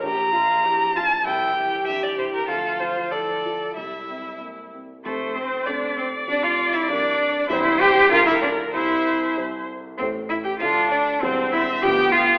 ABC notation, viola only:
X:1
M:2/4
L:1/8
Q:1/4=97
K:Cmix
V:1 name="Viola"
G F G F | E G3 | F2 A2 | E3 z |
c2 d2- | d4 | c2 B2 | c3 z |
[K:C] z2 D2 | C2 B,2 |]